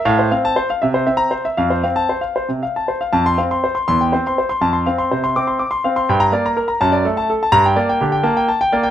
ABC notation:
X:1
M:6/8
L:1/16
Q:3/8=82
K:F
V:1 name="Grand piano"
f c f a c f e c e b c e | f c f a c f c C, f a c f | a c' f c' c c' c' g c c' c c' | a c' f c' c c' d' c' d' c' f c' |
g b d b B b a d A a A a | b g d g G g a g a g d g |]
V:2 name="Grand piano"
A,,2 C2 z2 C,2 C2 z2 | F,,2 C2 z8 | F,,2 C2 z2 E,,2 C2 z2 | F,,2 C2 C,2 C2 z2 C2 |
G,,2 B,2 z2 ^F,,2 A,2 z2 | G,,2 B,2 D,2 B,2 z2 B,2 |]